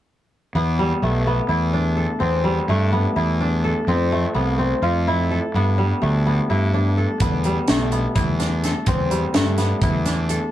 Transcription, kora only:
0.55 1.27 B3 medium
0.79 1.09 G3 medium
1.03 2.69 A3 medium
1.27 2.26 B3 medium
1.49 3.05 E4 medium
1.73 3.40 D4 medium
1.97 3.29 A4 medium
2.20 2.98 C4 medium
2.44 3.93 G3 medium
2.69 4.12 A3 medium
2.92 3.94 B3 medium
3.16 4.73 E4 medium
3.40 5.08 D4 medium
3.64 4.96 A4 medium
3.88 4.40 C4 medium
4.12 6.01 A3 medium
4.34 4.65 B3 medium
4.59 5.61 C4 medium
4.83 5.14 F4 medium
5.08 6.49 E4 medium
5.31 6.63 A4 medium
5.55 6.26 B3 medium
5.78 7.26 G3 medium
6.02 7.69 A3 medium
6.26 7.21 B3 medium
6.50 8.06 E4 medium
6.74 8.39 D4 medium
6.97 8.29 A4 medium
7.21 7.92 B3 medium
7.45 8.92 G3 medium
7.69 9.34 A3 medium
7.92 8.94 B3 medium
8.15 9.72 E4 medium
8.39 10.05 D4 medium
8.64 9.96 A4 medium
8.88 9.64 C4 medium
9.10 10.52 G3 medium
9.34 10.52 A3 medium
9.58 10.52 B3 medium
9.83 10.52 E4 medium
10.06 10.52 D4 medium
10.30 10.52 A4 medium

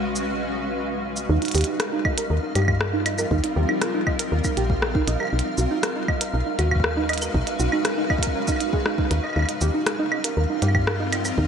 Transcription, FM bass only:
0.00 1.27 B1 medium
1.29 1.39 D#2 loud
1.55 1.64 D#2 loud
2.30 2.39 D#2 medium
2.55 3.26 G2 medium
3.31 3.40 D#2 loud
3.56 3.66 D#2 loud
4.32 4.41 D#2 medium
4.57 5.02 A#1 medium
5.08 5.17 A#1 medium
5.33 5.42 B1 loud
5.58 5.67 B1 loud
6.34 6.43 B1 medium
6.59 7.29 D#2 medium
7.34 7.44 B1 loud
7.60 7.69 B1 loud
9.11 9.20 D#2 medium
9.36 9.45 D#2 loud
9.61 9.71 D#2 loud
10.37 10.46 D#2 medium
10.62 11.32 G2 medium
11.38 11.47 D#2 loud

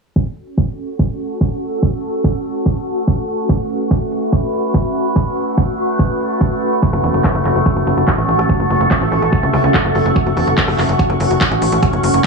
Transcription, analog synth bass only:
6.93 7.00 F#1 medium
7.03 7.10 E1 loud
7.14 7.21 F#1 medium
7.35 7.42 F#1 medium
7.45 7.52 F#1 loud
7.55 7.62 F#1 medium
7.76 7.83 F#1 medium
7.87 7.94 F#1 loud
7.97 8.04 F#1 loud
8.18 8.25 A1 medium
8.28 8.35 A1 medium
8.39 8.46 A1 medium
8.60 8.67 F#1 medium
8.70 8.77 F#1 medium
8.81 8.87 F#1 loud
9.01 9.08 A1 medium
9.12 9.19 A1 loud
9.22 9.29 A1 loud
9.43 9.50 C#2 medium
9.53 9.60 C#2 loud
9.64 9.71 C#2 medium
9.85 9.92 F#1 medium
9.95 10.02 F#1 medium
10.06 10.12 F#1 loud
10.26 10.33 F#1 medium
10.37 10.44 E1 loud
10.47 10.54 F#1 loud
10.68 10.75 F#1 medium
10.78 10.85 F#1 loud
10.89 10.96 F#1 loud
11.10 11.17 F#1 medium
11.20 11.27 F#1 loud
11.31 11.37 F#1 medium
11.51 11.58 A1 medium
11.62 11.69 A1 medium
11.72 11.79 A1 medium
11.93 12.00 F#1 medium
12.03 12.10 F#1 loud
12.14 12.21 F#1 loud

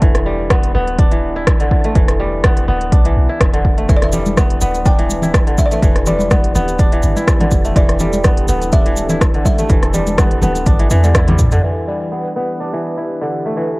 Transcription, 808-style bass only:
0.02 0.71 E1 loud
0.75 1.68 D1 loud
1.96 2.65 E1 loud
2.68 2.92 D1 loud
2.92 3.13 B1 medium
3.17 3.27 B1 medium
3.41 3.86 E1 medium
3.89 4.58 E1 loud
4.62 5.55 D1 loud
5.83 6.52 E1 loud
6.55 7.00 D1 loud
7.04 7.14 G1 loud
7.52 7.72 E1 loud
7.76 8.45 E1 loud
8.48 9.42 D1 loud
9.70 10.39 E1 loud
10.42 10.66 D1 loud
10.66 10.87 G1 medium
10.91 11.60 E2 medium

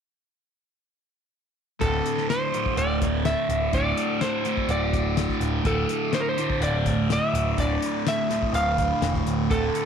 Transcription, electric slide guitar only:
1.81 2.30 A4 medium
2.30 2.77 C5 medium
2.78 3.25 D5 loud
3.26 3.75 E5 medium
3.74 4.23 D5 loud
4.21 4.71 C5 medium
4.71 5.38 D5 medium
5.67 6.16 A4 medium
6.14 6.21 C5 medium
6.21 6.28 A#4 medium
6.29 6.60 C5 medium
6.64 7.12 D5 medium
7.12 7.61 E5 medium
7.60 8.08 D5 medium
8.08 8.55 E5 medium
8.55 9.23 F5 medium
9.51 9.85 A4 medium

